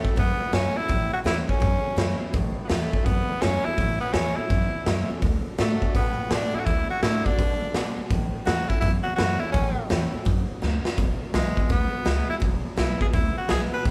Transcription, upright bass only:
0.04 muted upright bass stroke medium
0.17 0.33 F#2 loud
0.41 muted upright bass stroke medium
0.53 0.68 F#2 medium
0.77 muted upright bass stroke medium
0.89 1.05 A1 medium
1.25 1.41 E2 loud
1.62 1.77 F#2 loud
1.85 muted upright bass stroke medium
1.97 2.12 F#2 medium
2.21 muted upright bass stroke medium
2.34 2.49 A1 loud
2.70 2.85 E2 loud
3.06 3.21 F#2 medium
3.30 muted upright bass stroke medium
3.43 3.58 F#2 medium
3.66 muted upright bass stroke medium
3.78 3.93 A1 medium
4.14 4.29 E2 loud
4.38 muted upright bass stroke medium
4.50 4.65 F#2 medium
4.74 muted upright bass stroke medium
4.86 5.01 F#2 medium
5.10 muted upright bass stroke medium
5.22 5.37 D2 loud
5.59 5.74 A2 loud
5.94 6.10 B2 loud
6.18 muted upright bass stroke medium
6.31 6.46 B2 medium
6.54 muted upright bass stroke medium
6.67 6.82 D2 loud
6.90 muted upright bass stroke medium
7.03 7.18 A2 loud
7.39 7.54 B2 loud
7.62 muted upright bass stroke medium
7.74 7.89 B2 medium
7.98 muted upright bass stroke medium
8.11 8.26 A1 loud
8.34 muted upright bass stroke medium
8.47 8.62 E2 loud
8.82 8.98 F#2 medium
9.07 muted upright bass stroke medium
9.19 9.34 F#2 medium
9.43 muted upright bass stroke medium
9.54 9.69 A1 medium
9.78 muted upright bass stroke medium
9.91 10.06 E2 loud
10.14 muted upright bass stroke medium
10.26 10.41 F#2 medium
10.50 muted upright bass stroke medium
10.63 10.78 D2 medium
10.85 muted upright bass stroke medium
10.98 11.13 E1 loud
11.21 muted upright bass stroke medium
11.34 11.49 B1 loud
11.57 muted upright bass stroke medium
11.70 11.85 D2 loud
11.92 muted upright bass stroke medium
12.05 12.21 C#2 medium
12.29 muted upright bass stroke medium
12.42 12.57 E1 loud
12.65 muted upright bass stroke medium
12.78 12.93 B1 loud
13.01 muted upright bass stroke medium
13.14 13.29 D2 medium
13.37 muted upright bass stroke medium
13.50 13.65 B1 medium
13.86 13.91 A1 loud

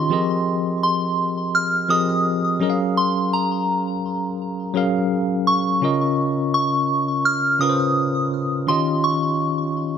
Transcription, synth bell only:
0.00 0.82 C6 medium
0.83 1.56 C6 medium
1.55 1.91 F6 loud
1.90 3.00 D#6 loud
2.97 3.30 C6 loud
3.33 4.72 A#5 medium
5.47 6.53 C#6 loud
6.54 7.27 C#6 loud
7.25 7.58 F6 loud
7.61 8.71 D#6 loud
8.68 9.05 C6 medium
9.04 9.98 C#6 medium

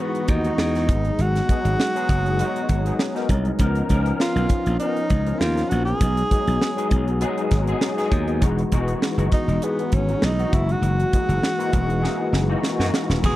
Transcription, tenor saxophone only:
0.01 0.31 B3 medium
0.30 1.23 D#4 medium
1.22 3.31 F#4 medium
4.21 4.77 F4 medium
4.80 5.41 D#4 medium
5.39 5.70 F4 medium
5.69 5.85 F#4 medium
5.85 7.03 G#4 medium
9.33 9.66 D#4 medium
9.64 9.96 B3 medium
9.94 10.27 C#4 medium
10.26 10.56 D#4 medium
10.54 10.74 E4 medium
10.72 12.66 F#4 medium
13.26 13.36 G#4 medium

